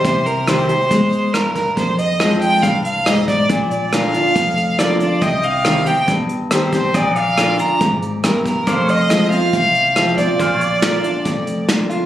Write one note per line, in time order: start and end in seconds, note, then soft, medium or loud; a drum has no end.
0.00 0.28 C5 medium
0.04 0.67 C2 medium
0.04 0.87 C3 medium
0.04 kick loud
0.04 closed hi-hat medium
0.26 0.50 A#4 medium
0.26 closed hi-hat medium
0.47 0.68 D#3 medium
0.47 0.69 G3 medium
0.47 0.69 C4 medium
0.47 0.68 G4 medium
0.47 1.35 C5 medium
0.47 cross-stick medium
0.47 closed hi-hat medium
0.69 0.91 C4 soft
0.69 0.90 G4 medium
0.69 closed hi-hat medium
0.91 1.53 G1 medium
0.91 1.32 G#3 medium
0.91 kick medium
0.91 closed hi-hat medium
1.12 closed hi-hat soft
1.34 1.75 G2 medium
1.34 1.55 A#4 medium
1.34 cross-stick medium
1.34 closed hi-hat medium
1.55 1.76 A#4 medium
1.55 kick medium
1.55 closed hi-hat medium
1.77 2.40 F2 medium
1.77 2.59 F2 medium
1.77 1.97 C5 medium
1.77 kick loud
1.77 closed hi-hat medium
1.99 2.39 D#5 medium
1.99 closed hi-hat medium
2.20 2.61 F3 medium
2.20 2.62 G#3 medium
2.20 2.62 C4 medium
2.20 2.62 F4 medium
2.20 cross-stick loud
2.20 closed hi-hat medium
2.41 2.64 G5 medium
2.41 closed hi-hat medium
2.63 3.26 C2 medium
2.63 3.04 G2 medium
2.63 2.84 F5 medium
2.63 kick medium
2.63 closed hi-hat medium
2.85 3.09 F5 medium
2.85 closed hi-hat medium
3.06 3.48 G#2 medium
3.06 3.28 D#5 medium
3.06 cross-stick loud
3.06 closed hi-hat medium
3.28 3.68 D5 medium
3.28 kick medium
3.28 closed hi-hat medium
3.50 4.12 A#1 medium
3.50 4.32 A#2 medium
3.50 kick loud
3.50 closed hi-hat medium
3.70 3.95 D5 medium
3.70 closed hi-hat medium
3.92 4.13 D3 medium
3.92 4.14 A#3 medium
3.92 4.14 D4 medium
3.92 4.13 F4 medium
3.92 4.80 F5 medium
3.92 cross-stick loud
3.92 closed hi-hat medium
4.14 4.36 D4 soft
4.14 4.35 F4 medium
4.14 closed hi-hat medium
4.36 4.98 F1 medium
4.36 5.18 F2 medium
4.36 kick loud
4.36 closed hi-hat medium
4.57 closed hi-hat medium
4.78 4.99 D3 medium
4.78 5.00 A#3 medium
4.78 5.00 D4 medium
4.78 4.99 F4 medium
4.78 5.00 D5 medium
4.78 cross-stick medium
4.78 closed hi-hat medium
5.00 5.22 D4 soft
5.00 5.21 F4 soft
5.00 5.23 D5 medium
5.00 closed hi-hat soft
5.22 5.84 C2 medium
5.22 6.04 C3 medium
5.22 6.93 D#5 medium
5.22 5.46 D#5 medium
5.22 6.93 G5 medium
5.22 kick medium
5.22 closed hi-hat medium
5.43 5.89 F5 medium
5.43 closed hi-hat medium
5.65 5.86 D#3 medium
5.65 5.86 G3 medium
5.65 5.86 C4 medium
5.65 5.85 G4 medium
5.65 cross-stick loud
5.65 closed hi-hat medium
5.86 6.08 C4 soft
5.86 6.07 G4 medium
5.86 6.09 G5 medium
5.86 closed hi-hat medium
6.08 6.71 G1 medium
6.08 6.90 G2 medium
6.08 kick medium
6.08 closed hi-hat medium
6.29 closed hi-hat medium
6.51 6.72 D#3 soft
6.51 6.72 G3 medium
6.51 6.72 C4 soft
6.51 6.71 G4 medium
6.51 6.72 C5 medium
6.51 cross-stick loud
6.51 closed hi-hat medium
6.72 6.94 C4 soft
6.72 6.93 G4 medium
6.72 6.97 C5 medium
6.72 kick medium
6.72 closed hi-hat medium
6.94 7.57 A#1 medium
6.94 7.76 A#2 medium
6.94 7.17 D5 medium
6.94 7.15 D#5 medium
6.94 7.21 G5 medium
6.94 kick loud
6.94 closed hi-hat medium
7.15 8.65 D5 medium
7.15 7.62 F5 medium
7.15 closed hi-hat medium
7.21 8.66 F5 medium
7.37 7.58 D3 medium
7.37 7.58 A#3 medium
7.37 7.58 D4 medium
7.37 7.57 F4 medium
7.37 cross-stick medium
7.37 closed hi-hat medium
7.58 7.80 D4 soft
7.58 7.79 F4 medium
7.58 7.81 A#5 medium
7.58 closed hi-hat medium
7.81 8.18 G#1 medium
7.81 8.22 G#2 medium
7.81 kick loud
7.81 closed hi-hat medium
8.02 closed hi-hat medium
8.24 8.61 G1 medium
8.24 8.65 G2 medium
8.24 8.44 A#4 medium
8.24 cross-stick loud
8.24 closed hi-hat medium
8.46 8.70 A#4 medium
8.46 kick medium
8.46 closed hi-hat medium
8.67 9.30 F1 medium
8.67 9.49 F2 medium
8.67 8.92 C5 medium
8.67 8.92 D5 medium
8.67 10.39 F5 medium
8.67 kick loud
8.67 closed hi-hat medium
8.89 10.38 C5 medium
8.89 9.30 D#5 medium
8.89 closed hi-hat medium
9.10 9.31 F3 medium
9.10 9.31 G#3 medium
9.10 9.31 C4 medium
9.10 9.30 F4 medium
9.10 cross-stick medium
9.10 closed hi-hat medium
9.31 9.53 C4 soft
9.31 9.52 F4 medium
9.31 10.14 F5 loud
9.31 closed hi-hat medium
9.53 10.16 C2 medium
9.53 10.35 C3 medium
9.53 kick loud
9.53 closed hi-hat medium
9.75 closed hi-hat medium
9.96 10.17 F3 medium
9.96 10.18 G#3 medium
9.96 10.18 C4 medium
9.96 10.17 F4 medium
9.96 cross-stick loud
9.96 closed hi-hat medium
10.18 10.39 C4 soft
10.18 10.39 F4 medium
10.18 11.65 D5 medium
10.18 kick medium
10.18 closed hi-hat medium
10.39 11.02 A#1 medium
10.39 11.21 A#2 medium
10.39 10.65 C5 medium
10.39 12.06 F5 medium
10.39 kick loud
10.39 closed hi-hat medium
10.61 closed hi-hat medium
10.65 12.06 D5 medium
10.82 11.03 D3 medium
10.82 11.04 A#3 medium
10.82 11.04 D4 medium
10.82 11.03 F4 medium
10.82 snare medium
10.82 closed hi-hat medium
11.04 11.25 D4 soft
11.04 11.25 F4 medium
11.04 closed hi-hat medium
11.25 11.88 F1 medium
11.25 12.06 F2 medium
11.25 kick loud
11.25 closed hi-hat medium
11.47 closed hi-hat medium
11.68 11.89 D3 soft
11.68 11.90 A#3 medium
11.68 11.90 D4 medium
11.68 11.88 F4 medium
11.68 snare loud
11.68 closed hi-hat medium
11.89 12.06 D4 soft
11.89 12.06 F4 medium
11.89 closed hi-hat medium